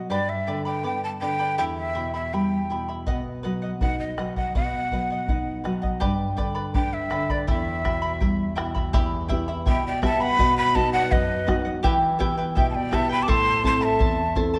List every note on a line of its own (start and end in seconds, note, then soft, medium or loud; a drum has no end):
0.00 0.11 D#5 soft
0.10 1.54 G2 medium
0.10 0.47 G4 medium
0.10 0.46 B4 medium
0.10 0.31 D5 medium
0.10 0.46 D5 medium
0.10 0.46 G5 medium
0.10 0.47 B5 medium
0.29 0.66 E5 medium
0.47 0.84 D3 soft
0.47 0.65 B4 soft
0.47 0.65 D5 medium
0.47 0.66 G5 medium
0.47 0.64 B5 medium
0.65 0.82 B4 soft
0.65 0.83 D5 soft
0.65 0.83 G5 medium
0.65 0.83 B5 medium
0.83 1.20 B3 medium
0.83 1.20 B4 soft
0.83 1.21 D5 medium
0.83 1.20 G5 soft
0.83 1.02 G5 medium
0.83 1.21 B5 medium
1.04 1.10 A5 medium
1.21 1.58 D3 soft
1.21 1.40 B4 soft
1.21 1.39 D5 medium
1.21 1.40 G5 medium
1.21 1.56 G5 medium
1.21 1.38 B5 medium
1.40 1.58 B4 soft
1.40 1.58 D5 soft
1.40 1.58 B5 soft
1.58 3.03 E2 medium
1.58 1.94 E4 medium
1.58 1.95 G4 medium
1.58 1.94 E5 medium
1.58 1.94 G5 medium
1.58 1.64 G5 medium
1.58 1.95 B5 medium
1.77 2.12 E5 medium
1.95 2.32 B2 soft
1.95 2.14 E4 medium
1.95 2.13 E5 medium
1.95 2.14 G5 soft
1.95 2.12 B5 medium
2.14 2.32 E4 soft
2.14 2.32 E5 soft
2.14 2.35 E5 medium
2.14 2.33 B5 soft
2.33 2.69 G3 medium
2.33 2.69 E4 soft
2.33 2.70 E5 medium
2.33 2.69 G5 medium
2.33 2.89 G5 medium
2.33 2.71 B5 medium
2.70 3.06 B2 soft
2.70 2.89 E4 medium
2.70 2.88 E5 soft
2.70 2.88 G5 soft
2.70 2.87 B5 medium
2.89 3.06 E4 soft
2.89 3.06 E5 soft
2.89 3.07 B5 soft
3.06 4.51 B2 medium
3.06 3.42 B4 medium
3.06 3.43 D#5 medium
3.06 3.44 F#5 medium
3.06 bombo low medium
3.43 3.80 F#3 soft
3.43 3.62 B4 medium
3.43 3.62 D#5 medium
3.43 3.61 F#5 medium
3.62 3.81 D#5 soft
3.62 3.81 F#5 soft
3.81 4.17 D#4 medium
3.81 4.16 B4 soft
3.81 4.17 D#5 soft
3.81 3.98 F#5 medium
3.81 4.18 F#5 medium
3.81 bombo low medium
4.00 4.34 D#5 medium
4.18 4.54 F#3 soft
4.18 4.36 B4 soft
4.18 4.37 D#5 medium
4.18 4.35 F#5 medium
4.18 bombo rim soft
4.36 4.54 D#5 soft
4.36 4.53 F#5 medium
4.36 4.55 F#5 soft
4.36 bombo low medium
4.55 5.98 B2 medium
4.55 4.91 B4 medium
4.55 4.92 D#5 medium
4.55 4.92 F#5 medium
4.55 5.62 F#5 medium
4.55 bombo low medium
4.92 5.28 F#3 soft
4.92 5.10 B4 medium
4.92 5.11 D#5 medium
4.92 5.09 F#5 medium
4.92 bombo low soft
5.10 5.28 D#5 soft
5.10 5.29 F#5 soft
5.28 5.64 D#4 medium
5.28 5.63 B4 soft
5.28 5.63 D#5 soft
5.28 5.64 F#5 medium
5.28 bombo low medium
5.64 6.01 F#3 soft
5.64 5.83 B4 soft
5.64 5.82 D#5 medium
5.64 5.81 F#5 medium
5.64 bombo rim soft
5.82 6.00 D#5 soft
5.82 6.00 F#5 medium
5.82 bombo low medium
6.00 7.45 G2 medium
6.00 6.38 G4 medium
6.00 6.36 B4 medium
6.00 6.36 D5 medium
6.00 6.35 G5 medium
6.00 6.37 B5 medium
6.00 bombo low medium
6.37 6.74 D3 soft
6.37 6.55 B4 medium
6.37 6.54 D5 medium
6.37 6.56 G5 medium
6.37 6.54 B5 medium
6.37 bombo low medium
6.55 6.73 B4 soft
6.55 6.74 D5 medium
6.55 6.74 B5 medium
6.74 7.11 D4 medium
6.74 7.09 B4 medium
6.74 7.10 D5 medium
6.74 7.09 G5 soft
6.74 6.95 G5 loud
6.74 7.11 B5 soft
6.74 bombo low medium
6.93 7.32 E5 medium
7.10 7.47 D3 medium
7.10 7.30 B4 medium
7.10 7.29 D5 medium
7.10 7.29 G5 medium
7.10 7.29 B5 medium
7.10 bombo rim medium
7.29 7.47 B4 soft
7.29 7.49 D5 medium
7.29 7.48 D5 soft
7.29 7.47 B5 soft
7.29 bombo low medium
7.47 8.90 E2 medium
7.47 7.83 E4 medium
7.47 7.84 G4 medium
7.47 7.84 E5 medium
7.47 8.55 E5 medium
7.47 7.83 G5 medium
7.47 7.84 B5 medium
7.47 bombo low medium
7.84 8.20 B2 soft
7.84 8.02 E4 medium
7.84 8.01 E5 medium
7.84 8.03 G5 medium
7.84 8.01 B5 medium
7.84 bombo rim soft
7.84 bombo low medium
8.02 8.20 E4 soft
8.02 8.20 E5 soft
8.02 8.21 B5 medium
8.21 8.57 G3 medium
8.21 8.55 E4 medium
8.21 8.55 E5 medium
8.21 8.54 G5 medium
8.21 8.56 B5 medium
8.21 bombo low medium
8.56 8.94 B2 soft
8.56 8.75 E4 medium
8.56 8.74 E5 medium
8.56 8.75 G5 medium
8.56 8.73 B5 medium
8.56 bombo rim medium
8.75 8.93 E4 soft
8.75 8.93 E5 medium
8.75 8.93 B5 medium
8.75 bombo low medium
8.93 9.65 E2 medium
8.93 9.28 E4 medium
8.93 9.30 G4 medium
8.93 9.28 E5 medium
8.93 9.27 G5 medium
8.93 9.29 B5 loud
8.93 bombo low medium
9.29 9.89 B3 soft
9.29 9.48 E4 medium
9.29 9.89 E4 soft
9.29 9.90 G4 soft
9.29 9.47 E5 medium
9.29 9.48 G5 medium
9.29 9.47 B5 medium
9.29 bombo low medium
9.48 9.65 E4 soft
9.48 9.66 E5 medium
9.48 9.66 B5 medium
9.66 10.37 B2 medium
9.66 10.01 E4 medium
9.66 10.02 E5 medium
9.66 9.84 E5 medium
9.66 10.01 G5 medium
9.66 9.85 G5 medium
9.66 10.02 B5 medium
9.66 bombo low medium
9.86 10.03 D5 medium
9.86 10.03 G5 medium
10.02 10.32 B3 medium
10.02 10.21 E4 medium
10.02 10.32 E4 soft
10.02 10.33 G4 medium
10.02 10.20 E5 medium
10.02 10.23 E5 loud
10.02 10.21 G5 medium
10.02 10.23 A5 loud
10.02 10.19 B5 medium
10.02 bombo rim soft
10.02 bombo low medium
10.20 10.39 E4 soft
10.20 10.39 E5 soft
10.20 10.57 F#5 medium
10.20 10.39 B5 medium
10.20 10.57 B5 loud
10.39 11.10 B2 medium
10.39 10.74 B4 medium
10.39 10.74 D#5 medium
10.39 10.75 F#5 medium
10.39 bombo low medium
10.58 10.76 F#5 medium
10.58 10.77 B5 loud
10.74 11.33 B3 soft
10.74 11.34 D#4 soft
10.74 11.34 F#4 medium
10.74 10.94 B4 medium
10.74 10.93 D#5 medium
10.74 10.94 D#5 medium
10.74 10.92 F#5 medium
10.74 10.93 A5 loud
10.74 bombo low medium
10.93 11.12 D5 medium
10.93 11.11 D#5 soft
10.93 11.13 F#5 medium
10.93 11.11 F#5 medium
11.10 11.82 F#2 medium
11.10 11.65 B4 medium
11.10 11.46 B4 medium
11.10 11.66 D#5 medium
11.10 11.46 D#5 medium
11.10 11.47 F#5 medium
11.10 bombo low medium
11.47 11.77 B3 medium
11.47 11.77 D#4 soft
11.47 11.77 F#4 medium
11.47 11.66 B4 medium
11.47 11.65 D#5 medium
11.47 11.64 F#5 medium
11.47 bombo rim medium
11.47 bombo low medium
11.65 11.83 D#5 soft
11.65 11.83 F#5 medium
11.83 12.54 E3 medium
11.83 12.18 E4 medium
11.83 12.20 G4 medium
11.83 12.19 B4 medium
11.83 12.18 E5 medium
11.83 12.19 G5 medium
11.83 bombo low medium
12.19 12.78 B3 soft
12.19 12.38 E4 medium
12.19 12.78 E4 soft
12.19 12.78 G4 medium
12.19 12.37 B4 medium
12.19 12.38 E5 medium
12.19 12.36 G5 medium
12.19 bombo low medium
12.38 12.55 E4 soft
12.38 12.55 B4 medium
12.38 12.56 G5 medium
12.55 13.26 B2 medium
12.55 12.91 E4 medium
12.55 12.92 B4 medium
12.55 12.90 E5 medium
12.55 12.69 E5 medium
12.55 12.69 G5 medium
12.55 12.91 G5 medium
12.55 bombo low medium
12.70 12.76 E5 soft
12.70 12.76 A5 medium
12.75 12.95 D5 medium
12.75 12.95 G5 medium
12.91 13.21 B3 soft
12.91 13.10 E4 medium
12.91 13.21 E4 soft
12.91 13.21 G4 medium
12.91 13.09 B4 medium
12.91 13.10 E5 medium
12.91 13.09 E5 medium
12.91 13.08 G5 medium
12.91 13.11 A5 loud
12.91 bombo rim medium
12.91 bombo low medium
13.09 13.27 E4 soft
13.09 13.27 B4 soft
13.09 13.28 G5 medium
13.09 13.24 G5 medium
13.09 13.24 B5 loud
13.22 13.28 A5 medium
13.22 13.31 D6 medium
13.28 13.98 A2 medium
13.28 13.63 E4 medium
13.28 13.63 A4 medium
13.28 13.64 C5 medium
13.28 13.62 E5 medium
13.28 13.65 A5 medium
13.28 13.64 A5 medium
13.28 13.65 C6 loud
13.28 bombo low medium
13.64 14.22 C4 soft
13.64 13.81 E4 medium
13.64 14.22 E4 soft
13.64 14.22 A4 medium
13.64 13.81 C5 medium
13.64 13.82 E5 medium
13.64 13.80 A5 medium
13.64 13.85 A5 medium
13.64 13.86 C6 medium
13.64 bombo low medium
13.81 13.99 E4 soft
13.81 13.99 C5 medium
13.81 14.37 E5 medium
13.81 13.99 A5 medium
13.81 14.38 A5 medium
13.99 14.59 E2 medium
13.99 14.34 E4 medium
13.99 14.35 C5 medium
13.99 14.34 E5 medium
13.99 14.35 A5 medium
13.99 bombo low medium
14.35 14.59 C4 medium
14.35 14.54 E4 medium
14.35 14.59 E4 soft
14.35 14.59 A4 medium
14.35 14.54 C5 medium
14.35 14.54 E5 medium
14.35 14.52 A5 medium
14.35 bombo low medium
14.54 14.59 E4 soft
14.54 14.59 C5 medium
14.54 14.59 A5 medium